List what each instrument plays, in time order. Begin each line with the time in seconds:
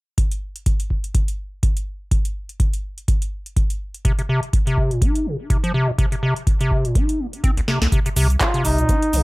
0.18 kick, closed hi-hat
0.31 closed hi-hat
0.56 closed hi-hat
0.66 kick, closed hi-hat
0.80 closed hi-hat
0.90 kick
1.04 closed hi-hat
1.15 kick, closed hi-hat
1.28 closed hi-hat
1.63 kick, closed hi-hat
1.77 closed hi-hat
2.11 kick, closed hi-hat
2.25 closed hi-hat
2.49 closed hi-hat
2.60 kick, closed hi-hat
2.73 closed hi-hat
2.98 closed hi-hat
3.08 kick, closed hi-hat
3.22 closed hi-hat
3.46 closed hi-hat
3.57 kick, closed hi-hat
3.70 closed hi-hat
3.94 closed hi-hat
4.05 acid bass C3, kick, closed hi-hat
4.19 acid bass C3, closed hi-hat
4.29 acid bass C3
4.43 closed hi-hat
4.53 kick, closed hi-hat
4.67 acid bass C3, closed hi-hat
4.77 kick
4.91 acid bass A#2, closed hi-hat
5.02 acid bass D#4, kick, closed hi-hat
5.15 closed hi-hat
5.26 acid bass C3
5.50 acid bass C3, kick, closed hi-hat
5.64 acid bass F3, closed hi-hat
5.74 acid bass C3
5.88 acid bass A#2
5.98 acid bass C3, kick, closed hi-hat
6.12 acid bass C3, closed hi-hat
6.23 acid bass C3
6.36 closed hi-hat
6.47 kick, closed hi-hat
6.61 acid bass C3, closed hi-hat
6.71 kick
6.85 acid bass A#2, closed hi-hat
6.95 acid bass D#4, kick, closed hi-hat
7.09 closed hi-hat
7.20 acid bass A#3
7.33 closed hi-hat
7.44 acid bass C4, kick, closed hi-hat
7.57 acid bass C2, closed hi-hat
7.68 acid bass C3, snare
7.82 acid bass C2, snare, closed hi-hat
7.92 acid bass C3, kick, closed hi-hat, cabasa
8.06 acid bass C3, closed hi-hat, cabasa
8.16 sub bass C2, acid bass C3, open hi-hat, cabasa
8.30 closed hi-hat, cabasa
8.41 muted trumpet F4, kick, clap, closed hi-hat, cabasa
8.54 acid bass C3, closed hi-hat
8.65 sub bass C2, muted trumpet D#4, kick, open hi-hat, cabasa
8.78 acid bass A#2, closed hi-hat, cabasa
8.89 acid bass D#4, kick, closed hi-hat, cabasa
9.02 closed hi-hat
9.13 sub bass C2, acid bass C3, open hi-hat, cabasa